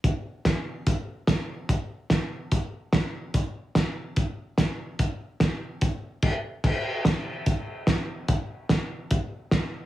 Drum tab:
CC |--------|--------|--------|------x-|
HH |x-x-x-x-|x-x-x-x-|x-x-x-x-|x-x-x---|
SD |--o---o-|--o---o-|--o---o-|--o-----|
BD |o-o-o-o-|o-o-o-o-|o-o-o-o-|o-o-o-o-|

CC |x-------|--------|
HH |--x-x-x-|x-x-x-x-|
SD |--o---o-|--o---o-|
BD |o-o-o-o-|o-o-o-o-|